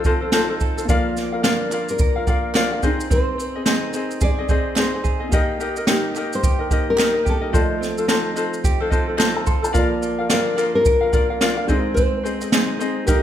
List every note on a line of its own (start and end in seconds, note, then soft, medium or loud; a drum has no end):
0.00 0.89 F3 medium
0.00 0.83 A3 medium
0.00 0.32 D#4 medium
0.00 0.84 F4 medium
0.00 0.60 A4 medium
0.00 0.85 D#5 medium
0.04 0.96 C4 medium
0.04 0.22 F4 medium
0.04 0.20 A4 medium
0.04 0.21 C5 medium
0.04 0.22 D#5 medium
0.04 kick medium
0.04 shaker medium
0.21 0.32 F4 soft
0.21 0.32 A4 medium
0.21 0.32 C5 medium
0.32 0.95 D#4 medium
0.32 0.50 F4 medium
0.32 0.48 A4 loud
0.32 0.49 C5 loud
0.32 0.49 D#5 medium
0.32 snare loud
0.32 clap medium
0.32 shaker medium
0.50 0.78 F4 medium
0.50 0.76 A4 medium
0.50 0.77 C5 medium
0.60 0.96 A4 medium
0.60 kick medium
0.60 shaker soft
0.78 0.88 F4 soft
0.78 0.89 A4 medium
0.78 0.89 C5 medium
0.78 shaker medium
0.85 2.77 A#3 medium
0.85 2.78 F4 medium
0.85 kick loud
0.85 shaker medium
0.89 2.90 F3 medium
0.89 1.33 F4 medium
0.89 1.32 A#4 medium
0.89 1.33 D5 medium
0.89 2.79 D5 medium
0.89 1.31 F5 medium
1.17 1.72 A#3 medium
1.17 snare soft
1.17 shaker medium
1.32 1.42 F4 medium
1.32 1.43 A#4 soft
1.32 1.43 F5 soft
1.43 2.54 D4 medium
1.43 1.71 F4 medium
1.43 1.72 A#4 medium
1.43 1.89 A#4 medium
1.43 1.71 D5 medium
1.43 1.72 F5 medium
1.43 snare loud
1.43 clap medium
1.43 shaker medium
1.71 2.26 A#3 medium
1.71 2.16 F4 medium
1.71 2.16 A#4 medium
1.71 2.16 D5 medium
1.71 2.15 F5 medium
1.71 clap medium
1.71 shaker medium
1.89 3.07 A#4 medium
1.89 shaker soft
1.99 2.90 A#4 medium
1.99 kick loud
1.99 shaker medium
2.16 2.27 F4 soft
2.16 2.27 A#4 medium
2.16 2.27 F5 medium
2.27 2.83 A#3 medium
2.27 2.54 F4 medium
2.27 2.54 A#4 medium
2.27 2.53 D5 medium
2.27 2.55 F5 medium
2.27 kick medium
2.27 shaker soft
2.54 2.90 D4 medium
2.54 2.72 F4 medium
2.54 2.72 A#4 loud
2.54 2.71 D5 loud
2.54 2.71 F5 loud
2.54 snare loud
2.54 clap medium
2.54 shaker medium
2.72 2.84 F4 soft
2.72 2.83 A#4 soft
2.72 2.83 F5 medium
2.82 5.00 C4 medium
2.82 3.09 C4 medium
2.82 3.55 C4 medium
2.82 5.02 D#4 medium
2.82 5.00 G#4 medium
2.82 3.55 G#4 medium
2.82 3.55 C5 medium
2.82 3.56 D#5 medium
2.82 kick medium
2.82 shaker soft
3.00 shaker medium
3.10 3.37 C4 medium
3.10 3.90 C5 medium
3.10 kick loud
3.10 shaker medium
3.38 3.93 C4 medium
3.38 shaker soft
3.56 3.65 C4 soft
3.56 3.66 G#4 soft
3.56 3.65 D#5 medium
3.65 3.94 C4 medium
3.65 4.77 D#4 medium
3.65 3.94 G#4 medium
3.65 3.93 C5 medium
3.65 3.94 D#5 medium
3.65 snare loud
3.65 clap medium
3.65 shaker medium
3.90 4.49 C4 medium
3.90 4.23 A#4 medium
3.90 shaker medium
3.94 4.38 C4 medium
3.94 4.38 G#4 medium
3.94 4.38 C5 medium
3.94 4.37 D#5 medium
4.11 shaker soft
4.21 5.03 G#4 medium
4.21 4.79 D5 loud
4.21 kick loud
4.21 shaker medium
4.38 4.48 C4 soft
4.38 4.49 G#4 soft
4.38 4.49 D#5 medium
4.49 4.77 C4 medium
4.49 5.31 C4 medium
4.49 4.77 G#4 medium
4.49 4.76 C5 medium
4.49 4.77 D#5 medium
4.49 kick medium
4.49 shaker medium
4.76 4.94 C4 medium
4.76 5.88 D#4 medium
4.76 4.94 G#4 medium
4.76 4.94 C5 medium
4.76 5.19 C5 medium
4.76 4.93 D#5 medium
4.76 snare loud
4.76 clap medium
4.76 shaker medium
4.94 5.21 C4 soft
4.94 5.20 G#4 soft
4.94 5.19 D#5 soft
5.04 5.38 G#4 medium
5.04 kick medium
5.04 shaker soft
5.20 5.33 C4 soft
5.20 5.32 G#4 soft
5.20 5.31 D#5 soft
5.29 7.48 A#3 medium
5.29 5.59 A#3 medium
5.29 7.49 G4 medium
5.29 kick loud
5.29 shaker medium
5.33 5.60 D#4 medium
5.33 5.59 G4 medium
5.33 5.61 A#4 medium
5.33 7.50 D#5 medium
5.33 5.61 D#5 medium
5.60 6.14 A#3 medium
5.60 5.77 D#4 medium
5.60 5.77 G4 medium
5.60 5.77 A#4 medium
5.60 5.76 D#5 medium
5.60 shaker soft
5.76 5.87 D#4 soft
5.76 5.87 A#4 soft
5.76 5.87 D#5 soft
5.76 shaker medium
5.87 6.15 D#4 medium
5.87 6.98 D#4 medium
5.87 6.15 G4 medium
5.87 6.34 G4 medium
5.87 6.15 A#4 medium
5.87 6.16 D#5 medium
5.87 snare loud
5.87 clap medium
5.87 shaker medium
6.15 6.70 A#3 medium
6.15 6.60 D#4 medium
6.15 6.60 G4 medium
6.15 6.59 A#4 medium
6.15 6.58 D#5 medium
6.15 clap medium
6.15 shaker medium
6.33 6.85 C5 loud
6.33 shaker soft
6.43 7.24 G4 medium
6.43 kick loud
6.43 shaker medium
6.59 6.70 D#4 soft
6.59 6.71 A#4 soft
6.59 6.70 D#5 medium
6.71 7.60 A#3 medium
6.71 6.98 D#4 medium
6.71 6.97 G4 medium
6.71 6.98 A#4 medium
6.71 6.98 D#5 medium
6.71 kick medium
6.71 shaker medium
6.90 7.28 A#4 medium
6.98 8.08 D#4 medium
6.98 7.15 D#4 medium
6.98 7.15 G4 medium
6.98 7.14 A#4 medium
6.98 7.13 D#5 medium
6.98 snare loud
6.98 clap medium
6.98 shaker medium
7.14 7.42 D#4 soft
7.14 7.41 A#4 soft
7.14 7.40 D#5 medium
7.25 7.60 G4 medium
7.25 kick medium
7.25 shaker soft
7.29 8.34 A4 medium
7.41 7.53 D#4 soft
7.41 7.53 A#4 soft
7.41 7.51 D#5 medium
7.51 9.73 F3 medium
7.51 9.70 A3 medium
7.51 7.98 F4 medium
7.51 9.71 F4 medium
7.51 7.97 A4 medium
7.51 7.97 C5 medium
7.51 7.62 D5 medium
7.51 7.97 D#5 medium
7.51 kick loud
7.51 shaker medium
7.62 9.75 D#5 medium
7.81 8.35 C4 medium
7.81 snare soft
7.81 shaker soft
7.98 8.07 F4 soft
7.98 8.08 A4 medium
7.98 8.08 C5 medium
7.98 shaker medium
8.08 9.18 D#4 medium
8.08 8.35 F4 medium
8.08 8.36 A4 medium
8.08 8.36 C5 loud
8.08 8.34 D#5 medium
8.08 snare loud
8.08 clap medium
8.08 shaker medium
8.36 8.91 C4 medium
8.36 8.81 F4 medium
8.36 8.79 A4 medium
8.36 8.80 C5 medium
8.36 8.80 D#5 medium
8.36 shaker medium
8.54 shaker soft
8.64 8.81 G4 medium
8.64 kick loud
8.64 shaker medium
8.80 8.90 F4 medium
8.80 8.91 A4 medium
8.80 9.46 A4 medium
8.80 8.91 C5 medium
8.90 9.82 C4 medium
8.90 9.08 F4 medium
8.90 9.06 A4 medium
8.90 9.07 C5 medium
8.90 9.08 D#5 medium
8.90 kick medium
8.90 shaker soft
9.07 9.17 F4 soft
9.07 9.17 A4 medium
9.07 9.17 C5 soft
9.17 9.81 D#4 medium
9.17 9.35 F4 medium
9.17 9.34 A4 loud
9.17 9.35 C5 medium
9.17 9.35 D#5 medium
9.17 snare loud
9.17 clap medium
9.17 shaker medium
9.35 9.63 F4 medium
9.35 9.61 A4 medium
9.35 9.62 C5 medium
9.35 9.47 A5 medium
9.46 9.81 A4 medium
9.46 9.63 C6 medium
9.46 kick medium
9.46 shaker soft
9.62 9.72 F4 soft
9.62 9.73 A4 medium
9.62 9.72 C5 medium
9.62 9.90 A5 medium
9.62 shaker medium
9.73 11.75 F3 medium
9.73 11.64 A#3 medium
9.73 10.18 F4 medium
9.73 11.65 F4 medium
9.73 10.19 A#4 loud
9.73 10.18 D5 medium
9.73 10.17 F5 medium
9.73 kick medium
9.73 shaker medium
9.78 11.66 D5 medium
10.03 10.57 A#3 medium
10.03 shaker soft
10.19 10.29 F4 soft
10.19 10.29 A#4 soft
10.19 10.30 F5 medium
10.29 10.47 C4 medium
10.29 10.56 F4 medium
10.29 10.57 A#4 medium
10.29 10.74 A#4 medium
10.29 10.55 D5 medium
10.29 10.58 F5 medium
10.29 snare loud
10.29 clap medium
10.29 shaker medium
10.47 11.41 D4 medium
10.56 11.13 A#3 medium
10.56 11.02 F4 medium
10.56 11.01 A#4 medium
10.56 11.02 D5 medium
10.56 11.00 F5 medium
10.56 clap medium
10.56 shaker medium
10.75 12.01 A#4 medium
10.85 11.76 A#4 medium
10.85 kick loud
10.85 shaker medium
11.01 11.12 F4 soft
11.01 11.13 A#4 soft
11.01 11.13 F5 medium
11.13 11.69 A#3 medium
11.13 11.30 F4 medium
11.13 11.30 A#4 medium
11.13 11.30 D5 medium
11.13 11.29 F5 medium
11.13 kick medium
11.13 shaker soft
11.30 11.40 F4 soft
11.30 11.40 A#4 soft
11.30 11.41 F5 soft
11.41 11.76 D4 medium
11.41 11.58 F4 medium
11.41 11.57 A#4 loud
11.41 11.58 D5 medium
11.41 11.56 F5 loud
11.41 snare loud
11.41 clap medium
11.41 shaker medium
11.57 11.68 F4 soft
11.57 11.69 A#4 soft
11.57 11.69 F5 medium
11.67 13.04 G#3 medium
11.67 12.23 C4 medium
11.67 11.96 C4 medium
11.67 13.05 D#4 medium
11.67 12.24 G#4 medium
11.67 12.22 C5 medium
11.67 13.05 C5 medium
11.67 12.25 D#5 medium
11.67 kick medium
11.67 shaker soft
11.94 12.24 C4 medium
11.94 13.02 C5 loud
11.94 kick medium
11.94 shaker medium
12.23 12.41 C4 medium
12.23 12.79 C4 medium
12.23 12.41 G#4 medium
12.23 12.40 C5 medium
12.23 12.40 D#5 medium
12.23 shaker soft
12.41 12.52 C4 soft
12.41 12.52 G#4 soft
12.41 12.52 D#5 medium
12.41 shaker medium
12.52 12.80 C4 medium
12.52 13.23 D#4 medium
12.52 12.80 G#4 medium
12.52 12.78 C5 medium
12.52 12.80 D#5 medium
12.52 snare loud
12.52 clap medium
12.52 shaker medium
12.79 13.07 C4 medium
12.79 13.08 C4 medium
12.79 13.08 G#4 medium
12.79 13.07 C5 medium
12.79 13.07 D#5 medium
12.79 shaker medium
13.05 13.23 G3 medium
13.05 13.23 A#3 medium
13.05 13.23 D#4 medium
13.05 13.23 G4 medium
13.05 13.23 A#4 medium
13.05 13.23 D#5 medium
13.05 kick loud
13.05 shaker medium
13.09 13.16 A4 medium
13.15 13.23 A#4 medium